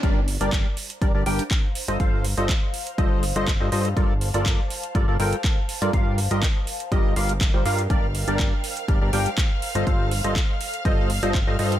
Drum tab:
HH |x-oxx-oxx-oxx-ox|x-oxx-oxx-oxx-ox|x-oxx-oxx-oxx-ox|x-oxx-oxx-oxx-ox|
CP |----x-------x---|----x-------x---|----x-------x---|----x-------x---|
BD |o---o---o---o---|o---o---o---o---|o---o---o---o---|o---o---o---o---|

HH |x-oxx-oxx-oxx-ox|x-oxx-oxx-oxx-ox|
CP |----x-------x---|----x-------x---|
BD |o---o---o---o---|o---o---o---o---|